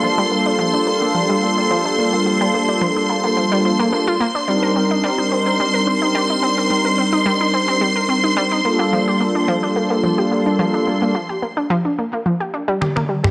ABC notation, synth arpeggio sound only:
X:1
M:4/4
L:1/16
Q:"Swing 16ths" 1/4=108
K:Gm
V:1 name="Synth arpeggio sound"
F, G, B, D F, D B, B, F, G, B, D F, D B, B, | F, G, B, D F, D B, B, F, G, F, B, B, F B, D | G, B C E G, E C C G, B C E G, E C C | G, B C E G, E C C G, B C E G, E B, B, |
F, G B, D F, D B, B, F, G B, D F, D B, B, | F, G B, D F, D B, B, F, G D G, G B, G, G |]